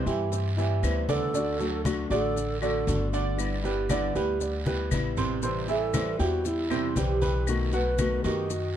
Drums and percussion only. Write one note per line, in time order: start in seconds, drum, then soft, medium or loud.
0.06 short guiro medium
0.06 maracas soft
0.32 high conga soft
0.32 long guiro medium
0.32 maracas medium
0.58 high conga soft
0.58 maracas soft
0.83 high conga soft
0.83 short guiro medium
0.83 claves medium
0.83 maracas medium
1.09 high conga medium
1.09 short guiro medium
1.09 maracas soft
1.34 high conga soft
1.34 long guiro medium
1.34 maracas medium
1.60 high conga soft
1.60 maracas soft
1.85 high conga medium
1.85 short guiro medium
1.85 claves medium
1.85 maracas medium
2.11 high conga soft
2.11 short guiro medium
2.11 maracas soft
2.36 high conga soft
2.36 long guiro medium
2.36 maracas medium
2.62 high conga soft
2.62 claves medium
2.62 maracas soft
2.87 high conga medium
2.87 short guiro medium
2.87 maracas medium
3.13 short guiro medium
3.13 maracas soft
3.38 high conga soft
3.38 long guiro medium
3.38 claves medium
3.38 maracas medium
3.64 high conga soft
3.64 maracas soft
3.89 high conga medium
3.89 short guiro medium
3.89 claves medium
3.89 maracas medium
4.16 short guiro medium
4.16 maracas soft
4.41 high conga soft
4.41 long guiro medium
4.41 maracas medium
4.66 high conga medium
4.66 maracas soft
4.91 high conga medium
4.91 short guiro medium
4.91 claves medium
4.91 maracas medium
5.17 low conga medium
5.17 short guiro medium
5.17 maracas soft
5.42 high conga soft
5.42 long guiro medium
5.42 maracas medium
5.68 high conga soft
5.68 maracas soft
5.94 high conga loud
5.94 short guiro medium
5.94 claves medium
5.94 maracas medium
6.20 high conga soft
6.20 short guiro medium
6.20 maracas soft
6.45 high conga soft
6.45 long guiro medium
6.45 maracas medium
6.70 high conga soft
6.70 claves medium
6.70 maracas soft
6.96 high conga medium
6.96 short guiro medium
6.96 maracas medium
7.22 high conga medium
7.22 short guiro medium
7.22 maracas soft
7.47 high conga soft
7.47 long guiro medium
7.47 claves medium
7.47 maracas medium
7.73 high conga soft
7.73 maracas soft
7.98 high conga loud
7.98 short guiro medium
7.98 claves medium
7.98 maracas medium
8.24 short guiro medium
8.24 maracas soft
8.50 high conga soft
8.50 long guiro medium
8.50 maracas medium